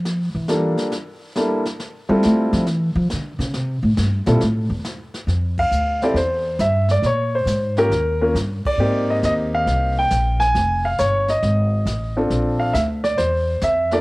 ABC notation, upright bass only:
X:1
M:4/4
L:1/8
Q:"Swing" 1/4=137
K:F
V:1 name="Upright bass" clef=bass
F, E,2 z4 z | z G, A, F, E, F, D, _D, | C, A,, G,, B,, A,, E,, z2 | F,,2 D,,2 E,,2 G,,2 |
B,,2 _A,,2 _E,,2 G,, z | _A,,2 _E,,2 C,,2 B,,,2 | F,,,2 G,,,2 ^G,,,2 A,,,2 | B,,,2 D,,2 E,,2 F,,2 |]